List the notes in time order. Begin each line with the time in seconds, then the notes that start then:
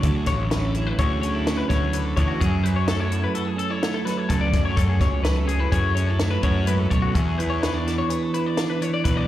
Already playing: F#3
0.03 D2 D3 A4, kick, closed hi-hat
0.16 G#4
0.26 A1 F#3 C#5, kick, snare, closed hi-hat
0.50 C#4 B4, snare, closed hi-hat
0.62 A4
0.74 E4 G#4, closed hi-hat
0.87 B4
0.98 D2 G#4 C#5, kick, closed hi-hat
1.22 C#4 C#5, closed hi-hat
1.34 E4 A4
1.45 C#4 G#4, snare, closed hi-hat
1.57 B4
1.69 D2 F#3 C#5, kick, snare, closed hi-hat
1.93 D3 B4, closed hi-hat
2.05 A4
2.17 D2 E3 C#5, kick, closed hi-hat
2.28 F#4
2.40 F#2 G#4, kick, closed hi-hat
2.64 F#3 B4, closed hi-hat
2.76 C#5
2.88 A3 A4, snare, closed hi-hat
3.00 C#5
3.12 E4, closed hi-hat
3.24 B4
3.34 F#4 A4, closed hi-hat
3.45 G#4
3.56 C#4 A4, closed hi-hat
3.70 E4 C#5
3.83 A3, snare, closed hi-hat
3.94 A4
4.05 F#3 B4, snare, closed hi-hat
4.17 C#5
4.29 C#2 F#2 A4, kick, closed hi-hat
4.41 D5
4.52 F#2 F#3, kick, snare, closed hi-hat
4.65 C#5
4.76 F#2 A4, kick, closed hi-hat
4.89 G#4
5.00 C#2 F#3 C#5, kick, snare, closed hi-hat
5.23 A3 B4, snare, closed hi-hat
5.36 A4
5.45 C#4 G#4, closed hi-hat
5.59 E4 B4
5.72 F#2 G#4 C#5, kick, closed hi-hat
5.95 C#4 C#5, closed hi-hat
6.07 E4 A4
6.19 A3 G#4, snare, closed hi-hat
6.31 B4
6.43 F#2 F#3 C#5, kick, closed hi-hat
6.67 G#2 B4, closed hi-hat
6.79 A4
6.90 B1 F#2 C#5, kick, closed hi-hat
7.02 F#4
7.15 E2 G#4, kick, closed hi-hat
7.38 E3 B4, closed hi-hat
7.50 C#5
7.63 D4 B4, snare, closed hi-hat
7.74 D5
7.87 E4, snare, closed hi-hat
7.98 C#5
8.10 G#4 B4, closed hi-hat
8.23 A4
8.34 E4 B4, closed hi-hat
8.46 D5
8.57 D4, snare, closed hi-hat
8.70 B4
8.81 E3 C#5, closed hi-hat
8.94 D5
9.04 B1 E2 B4, kick, closed hi-hat
9.17 D5